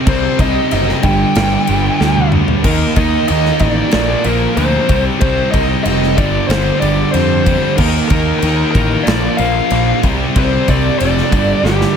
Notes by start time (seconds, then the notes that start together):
Already playing: C3 G3 C4
0.06 C2 C3 G3 C4 C5, kick, ride
0.38 C2 C3 G3 C4 D#4 D#5, kick, ride
0.69 F#1 C3 G3 C4 D#4 D#5, ride
0.89 snare
1.03 G1 G2 D3 G3 G4 G5, kick, ride
1.35 G1 G2 D3 G3, snare, ride
1.67 G1 G2 D3 G3, ride
2.00 D2 G2 D3 G3, snare
2.16 high tom
2.32 G2 D3 G3, mid tom
2.48 floor tom
2.62 D#2 D#3 A#3 D#4 A#4, kick, crash
2.95 D#2 D#3 A#3 D#4 D#5, kick, ride
3.27 D#2 D#3 A#3 D#4 D#5, ride
3.45 snare
3.59 A1 D#3 A#3 D4 D#4 D5, kick, ride
3.91 A#1 A#2 F3 A#3 D4 D5, snare, ride
4.24 A#1 A#2 F3 A#3 A#4, ride
4.54 D2 A#2 C4 C5, ride
4.58 F3 A#3
4.89 C2 C3 G3 C4, kick, ride
5.20 C2 C3 G3 C4 C5, kick, ride
5.52 C2 C3 G3 C4 D#4 D#5, kick, ride
5.84 F1 C3 G3 C4 D#4 D#5, ride
6.03 snare
6.18 G1 G2 D3 G3 D4 D5, kick, ride
6.48 G1 G2 D3 G3 C4 C5, snare, ride
6.80 G1 G2 D3 G3 D4 D5, ride
7.12 F2 G2 D3 G3 C4 C5, ride
7.46 G2 D3 G3, kick, ride
7.77 D#2 D#3 A#3 D#4 A#4, kick, crash
8.08 D#2 D#3 A#3 D#4 A#4, kick, ride
8.39 D#2 D#3 A#3 A#4, ride
8.43 A#3 D#4
8.71 A1 D#3 A#3 A#4, kick, ride
8.76 A#3 D#4
9.03 A#1 A#2 D4 D5, ride
9.08 F3 A#3, snare
9.37 A#1 A#2 F3 A#3 F4 F5, ride
9.70 A#1 A#2 F3 A#3, ride
10.03 C2 C3 G3 C4, kick, ride
10.36 C2 C3 G3 C4 C5, kick, ride
10.68 C2 C3 G3 C4 D4 D5, kick, ride
10.99 F1 C3 G3 C4 D4 D5, ride
11.18 snare
11.32 G1 G2 D3 G3, kick, ride
11.63 G1 G2 D3 G3 G4, snare
11.81 snare